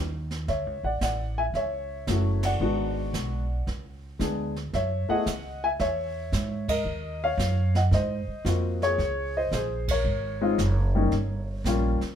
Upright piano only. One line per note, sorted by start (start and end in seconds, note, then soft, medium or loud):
0.48 0.82 C#5 medium
0.48 0.82 E5 medium
0.84 1.01 D5 medium
0.84 1.00 F#5 medium
1.03 1.36 D5 medium
1.03 1.39 F#5 medium
1.38 1.44 E5 medium
1.38 1.43 G#5 medium
1.55 2.41 C#5 medium
1.55 2.40 E5 medium
2.08 2.61 A3 medium
2.08 2.61 C#4 soft
2.08 2.62 E4 soft
2.08 2.61 F#4 medium
2.45 3.64 D5 medium
2.45 3.64 F#5 medium
2.61 3.43 G#3 medium
2.61 3.43 B3 medium
2.61 3.43 D4 medium
2.61 3.43 F#4 medium
4.19 4.52 G#3 medium
4.19 4.52 B3 soft
4.19 4.53 D4 medium
4.19 4.53 G#4 medium
4.74 5.08 C#5 medium
4.74 5.11 E5 medium
5.09 5.25 A3 medium
5.09 5.25 B3 medium
5.09 5.25 E4 medium
5.09 5.25 G#4 medium
5.09 5.60 D#5 medium
5.09 5.64 F#5 loud
5.64 5.70 E5 medium
5.64 5.69 G#5 medium
5.80 6.66 C#5 medium
5.80 6.72 E5 medium
6.69 7.19 A#4 medium
6.69 7.24 D#5 medium
7.24 7.73 C#5 medium
7.24 7.78 F5 loud
7.76 7.82 D#5 medium
7.76 7.81 F#5 medium
7.94 8.79 C5 medium
7.94 8.79 D#5 medium
8.45 8.99 A#3 medium
8.45 8.99 C4 medium
8.45 9.00 F4 medium
8.45 8.99 F#4 medium
8.83 9.33 G#4 medium
8.83 9.37 C#5 loud
9.37 9.52 C5 medium
9.37 9.54 D#5 medium
9.54 9.87 G#4 medium
9.54 9.90 C5 medium
9.91 12.15 A#4 medium
9.91 12.15 C#5 medium
10.41 10.57 G#3 medium
10.41 10.57 C4 medium
10.41 10.58 D#4 medium
10.41 10.58 F4 medium
10.95 11.11 G3 medium
10.95 11.11 A#3 medium
10.95 11.11 C#4 medium
10.95 11.12 D#4 medium
11.66 11.98 G3 medium
11.66 11.99 A#3 medium
11.66 11.99 C#4 medium
11.66 11.99 F4 medium